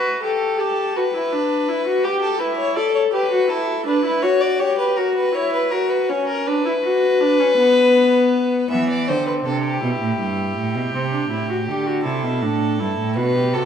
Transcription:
0.00 0.23 F#4 medium
0.00 0.21 B4 medium
0.23 0.61 G4 medium
0.23 0.61 A4 medium
0.60 0.96 G4 medium
0.60 0.98 A4 medium
0.96 1.03 F#4 medium
0.96 2.05 B4 medium
1.14 1.34 E4 medium
1.32 1.70 D4 medium
1.68 1.86 E4 medium
1.87 2.06 F#4 medium
2.04 2.21 G4 medium
2.04 2.40 G4 medium
2.22 2.41 A4 medium
2.40 2.78 E4 medium
2.40 2.57 B4 medium
2.57 2.76 C#5 medium
2.76 3.13 A4 medium
2.76 2.94 D5 medium
2.95 3.02 C#5 medium
3.13 3.31 G4 medium
3.13 3.51 B4 medium
3.32 3.50 F#4 medium
3.49 3.86 E4 medium
3.49 3.86 A4 medium
3.86 4.04 D4 medium
3.86 4.24 B4 medium
4.05 4.25 E4 medium
4.22 4.61 F#4 medium
4.22 4.42 C#5 medium
4.41 4.61 D5 medium
4.59 4.99 G4 medium
4.59 4.78 C#5 medium
4.78 4.98 B4 medium
4.97 5.34 F#4 medium
4.97 5.15 A#4 medium
5.15 5.36 B4 medium
5.34 5.71 E4 medium
5.34 5.52 C#5 medium
5.53 5.73 B4 medium
5.72 6.11 F#4 medium
5.72 5.91 A#4 medium
5.90 6.10 B4 medium
6.09 6.48 C#4 medium
6.09 6.27 C#5 medium
6.28 6.48 A#4 medium
6.46 6.65 D4 medium
6.46 8.70 B4 medium
6.65 6.73 E4 medium
6.84 7.23 F#4 medium
7.21 7.41 D4 medium
7.40 7.58 C#4 medium
7.58 8.68 B3 medium
8.70 9.10 E3 medium
8.70 9.06 B3 medium
8.70 8.88 E5 medium
8.89 9.10 D5 medium
9.08 9.45 D3 medium
9.08 9.47 C4 medium
9.08 9.26 C5 medium
9.27 9.34 B4 medium
9.46 9.82 C3 medium
9.46 9.82 D4 medium
9.46 9.64 A4 medium
9.64 12.01 G4 medium
9.82 9.90 B2 medium
9.82 10.91 E4 medium
10.01 10.19 A2 medium
10.19 10.56 G2 medium
10.57 10.76 A2 medium
10.75 10.93 B2 medium
10.93 11.30 C3 medium
10.93 11.01 C4 medium
11.12 11.30 D4 medium
11.30 11.69 A2 medium
11.30 11.49 E4 medium
11.49 11.57 F#4 medium
11.68 12.06 D3 medium
11.68 11.88 G4 medium
11.87 12.04 F#4 medium
12.05 12.24 C3 medium
12.05 12.44 E4 medium
12.05 13.14 A4 medium
12.23 12.43 B2 medium
12.41 12.80 A2 medium
12.41 12.81 D4 medium
12.79 12.97 G2 medium
12.79 13.18 E4 medium
12.98 13.18 A2 medium
13.16 13.55 B2 medium
13.16 13.35 F#4 medium
13.16 13.55 B4 medium
13.35 13.56 G4 medium
13.53 13.65 C3 medium
13.53 13.65 F#4 medium
13.53 13.65 A4 medium

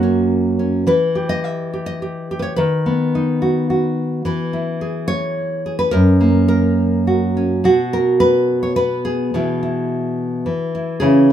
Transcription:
0.00 0.87 F#2 medium
0.00 0.84 A#3 medium
0.00 0.58 C#4 soft
0.00 0.87 F#4 medium
0.59 0.87 C#4 soft
0.87 2.57 E3 medium
0.87 1.29 B4 medium
1.15 1.72 G4 medium
1.29 1.85 D#5 medium
1.44 2.43 E5 loud
1.74 2.01 G4 soft
1.86 2.39 D#5 medium
2.02 2.30 G4 soft
2.31 2.55 G4 soft
2.39 2.42 B4 medium
2.39 2.56 C#5 medium
2.56 4.22 D#3 medium
2.56 4.24 B4 medium
2.86 4.22 B3 medium
3.15 4.22 D#4 soft
3.42 3.69 F#4 soft
3.70 4.25 F#4 soft
4.25 5.93 E3 medium
4.25 5.07 B4 medium
4.53 5.90 E4 medium
4.81 5.65 G#4 medium
5.08 5.78 C#5 loud
5.66 5.90 G#4 soft
5.79 5.93 B4 medium
5.91 7.64 F#2 medium
5.91 6.47 A#4 medium
6.21 7.60 A#3 medium
6.48 7.36 A#4 medium
7.07 7.64 F#4 soft
7.37 7.65 C#4 soft
7.64 9.33 B2 medium
7.64 8.20 F#4 medium
7.93 8.78 A#4 medium
8.20 8.62 B4 medium
8.63 8.76 C#5 medium
8.76 9.34 B3 medium
8.76 9.33 B4 medium
9.05 10.99 G#4 medium
9.34 10.46 B2 medium
9.34 10.45 E3 soft
9.34 9.62 E4 soft
9.63 10.74 E4 soft
10.46 11.01 E3 medium
10.75 10.99 E4 soft
11.00 11.33 C#3 medium
11.00 11.33 E3 soft
11.00 11.29 E4 soft
11.00 11.33 G#4 medium

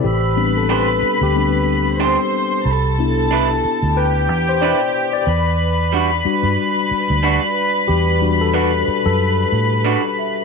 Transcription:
0.00 0.34 C5 medium
0.04 0.98 A1 medium
0.04 0.58 G4 medium
0.04 1.97 B4 medium
0.04 1.97 B5 medium
0.04 2.32 E6 medium
0.36 1.31 G3 soft
0.36 1.31 B3 soft
0.36 1.31 C4 soft
0.36 1.32 D4 medium
0.57 0.70 A4 medium
0.69 0.86 D4 medium
0.69 0.86 G4 medium
0.69 1.24 B4 loud
0.69 0.86 C5 medium
1.02 muted fingered electric bass stroke soft
1.21 2.16 D2 medium
1.21 2.82 G4 medium
1.35 1.65 G3 soft
1.35 1.65 B3 soft
1.35 1.65 C4 soft
1.35 1.65 D4 medium
2.00 2.16 D4 medium
2.00 2.17 G4 medium
2.00 2.17 C5 medium
2.00 2.66 C5 medium
2.00 2.66 C6 medium
2.65 3.60 C2 medium
2.65 3.96 A4 medium
2.65 3.95 A5 medium
2.65 4.92 B5 medium
2.99 3.44 B3 medium
2.99 3.45 D4 soft
2.99 3.45 E4 medium
3.31 3.47 D4 medium
3.31 3.48 E4 medium
3.31 3.48 B4 medium
3.65 muted fingered electric bass stroke soft
3.83 4.29 D2 medium
3.97 5.25 G4 medium
3.97 4.50 B4 medium
3.97 5.25 G5 medium
4.29 4.72 E2 medium
4.49 4.63 C5 medium
4.61 4.78 D4 medium
4.61 4.78 E4 medium
4.61 4.79 B4 medium
4.61 5.12 D5 loud
5.13 6.73 D5 medium
5.27 6.21 E2 loud
5.27 10.44 B4 medium
5.27 10.44 B5 medium
5.93 6.09 G3 medium
5.93 6.09 D4 medium
5.93 6.10 F#4 medium
6.25 8.20 G3 medium
6.25 8.21 D4 soft
6.25 8.21 F#4 medium
6.25 muted fingered electric bass stroke soft
6.43 6.55 G2 medium
6.91 muted fingered electric bass stroke soft
7.10 7.37 D2 medium
7.23 7.39 G3 medium
7.23 7.39 D4 medium
7.23 7.40 F#4 medium
7.23 9.50 D5 medium
7.88 8.83 E2 loud
7.88 8.36 G4 medium
8.21 8.67 G3 soft
8.21 8.67 D4 soft
8.21 8.67 F#4 medium
8.41 8.55 A4 medium
8.54 8.70 G3 medium
8.54 8.70 D4 medium
8.54 8.71 F#4 medium
8.54 9.02 B4 loud
8.88 muted fingered electric bass stroke soft
9.06 9.44 F#2 medium
9.06 10.44 A4 medium
9.52 9.95 A2 medium
9.85 10.01 G3 medium
9.85 10.01 D4 medium
9.85 10.01 F#4 medium
10.19 10.44 E5 medium

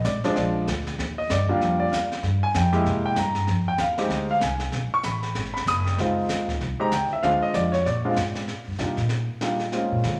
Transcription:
0.04 0.22 G#1 medium
0.04 0.34 D5 medium
0.04 snare medium
0.04 hi-hat pedal medium
0.24 0.65 F3 medium
0.24 0.65 G#3 medium
0.24 0.65 C4 medium
0.24 0.65 D4 medium
0.24 muted upright bass stroke soft
0.24 snare soft
0.36 0.66 A#1 medium
0.36 0.65 D5 medium
0.36 brush sweep medium
0.36 snare soft
0.67 0.98 D2 medium
0.67 snare medium
0.67 hi-hat pedal soft
0.87 snare soft
0.98 1.29 D#2 medium
0.98 brush sweep soft
0.98 snare soft
1.18 1.30 D#5 medium
1.30 1.43 G2 medium
1.30 1.77 D5 medium
1.30 snare medium
1.30 hi-hat pedal medium
1.41 1.51 D#2 medium
1.49 1.61 D2 medium
1.49 1.90 G3 medium
1.49 1.90 A#3 medium
1.49 1.90 D4 medium
1.49 1.90 F4 medium
1.61 1.91 F2 medium
1.61 brush sweep soft
1.61 snare soft
1.80 1.92 D5 medium
1.92 2.22 D#2 medium
1.92 2.21 F5 medium
1.92 snare medium
1.92 hi-hat pedal medium
2.12 snare soft
2.23 2.53 G2 medium
2.23 brush sweep soft
2.23 snare soft
2.43 2.55 G#5 loud
2.54 2.85 F2 medium
2.54 3.02 G5 medium
2.54 snare medium
2.54 hi-hat pedal medium
2.72 3.14 G#3 medium
2.72 3.14 A#3 medium
2.72 3.14 E4 medium
2.72 3.14 G4 medium
2.72 snare soft
2.86 3.15 C3 medium
2.86 brush sweep soft
2.86 snare soft
3.06 3.17 G5 medium
3.16 3.46 G2 medium
3.16 3.46 A#5 medium
3.16 snare medium
3.16 hi-hat pedal medium
3.35 snare soft
3.47 3.78 F2 medium
3.47 brush sweep soft
3.47 snare soft
3.68 3.80 G5 medium
3.78 4.09 D#2 medium
3.78 4.26 F5 medium
3.78 snare medium
3.78 hi-hat pedal medium
3.98 4.39 G#3 medium
3.98 4.39 C4 medium
3.98 4.39 D#4 medium
3.98 4.40 G4 medium
3.98 snare soft
4.09 4.40 D2 medium
4.09 brush sweep soft
4.09 snare soft
4.31 4.42 F5 medium
4.41 4.72 C2 medium
4.41 4.71 G#5 medium
4.41 snare medium
4.41 hi-hat pedal soft
4.60 snare soft
4.72 4.91 B1 medium
4.72 brush sweep soft
4.72 snare soft
4.91 5.05 C#6 loud
4.91 muted upright bass stroke soft
5.03 5.34 A1 medium
5.03 5.51 B5 medium
5.03 snare medium
5.03 hi-hat pedal medium
5.23 snare soft
5.35 5.66 G#1 medium
5.35 brush sweep medium
5.35 snare soft
5.46 snare soft
5.54 5.66 B5 medium
5.54 snare soft
5.66 5.97 F#1 medium
5.66 5.97 D#6 medium
5.66 snare medium
5.66 hi-hat pedal medium
5.87 snare soft
5.98 6.28 C#2 medium
5.98 6.45 G#3 medium
5.98 6.45 C4 medium
5.98 6.45 D#4 medium
5.98 6.45 F4 medium
5.98 brush sweep soft
5.98 snare soft
6.29 6.59 D#2 medium
6.29 snare medium
6.29 hi-hat pedal medium
6.48 kick medium
6.48 snare soft
6.61 6.78 C2 medium
6.61 brush sweep medium
6.61 snare soft
6.79 6.91 G#3 medium
6.79 6.91 C4 medium
6.79 6.91 D#4 medium
6.79 6.91 G4 medium
6.79 6.92 A#5 loud
6.79 muted upright bass stroke soft
6.92 7.09 C#2 medium
6.92 7.11 G5 medium
6.92 snare medium
6.92 hi-hat pedal medium
7.11 7.24 E5 medium
7.11 muted upright bass stroke soft
7.23 7.41 D2 medium
7.23 7.70 G#3 medium
7.23 7.70 C4 medium
7.23 7.70 D4 medium
7.23 7.70 F4 medium
7.23 7.41 F5 medium
7.23 brush sweep soft
7.23 snare soft
7.42 7.54 D#5 medium
7.42 muted upright bass stroke soft
7.54 7.84 F2 medium
7.54 7.73 D5 medium
7.54 snare medium
7.54 hi-hat pedal medium
7.72 7.85 C#5 medium
7.72 snare soft
7.85 8.16 A#2 medium
7.85 8.38 D5 medium
7.85 brush sweep medium
7.85 snare soft
8.05 8.16 G#3 medium
8.05 8.16 C4 medium
8.05 8.16 D4 medium
8.05 8.16 F4 medium
8.16 8.47 G#2 medium
8.16 snare medium
8.16 hi-hat pedal medium
8.35 snare soft
8.48 brush sweep soft
8.48 snare soft
8.67 8.79 G2 medium
8.79 8.97 C3 medium
8.79 8.96 G3 soft
8.79 8.96 A#3 soft
8.79 8.96 D4 soft
8.79 8.97 D#4 soft
8.79 8.96 F4 soft
8.79 snare medium
8.97 9.27 A#2 medium
8.97 snare soft
9.09 brush sweep soft
9.09 snare soft
9.41 9.59 G3 soft
9.41 9.59 A#3 soft
9.41 9.59 D4 soft
9.41 9.59 D#4 soft
9.41 9.59 F4 soft
9.41 snare medium
9.59 snare soft
9.72 10.20 G#3 medium
9.72 10.20 A#3 soft
9.72 10.20 C4 soft
9.72 10.20 C#4 soft
9.72 10.20 F4 medium
9.72 brush sweep soft
9.72 snare soft
9.92 10.04 A#2 medium
10.04 10.20 D#3 medium
10.04 snare medium

